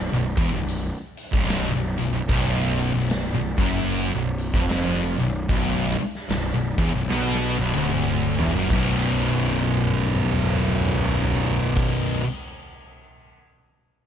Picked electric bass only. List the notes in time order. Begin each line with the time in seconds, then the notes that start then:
Already playing: B0
0.12 B0
0.37 E1
0.53 B0
1.33 B0
1.73 B0
1.99 B0
2.13 B0
2.29 B0
2.94 B0
3.34 B0
3.58 F#1
4.14 B0
4.54 F1
5.18 B0
5.49 B0
5.98 muted picked electric bass stroke
6.29 B0
6.53 B0
6.78 E1
6.94 B0
7.10 B1
7.58 B0
7.75 D1
8.40 E1
8.56 F#1
8.70 B0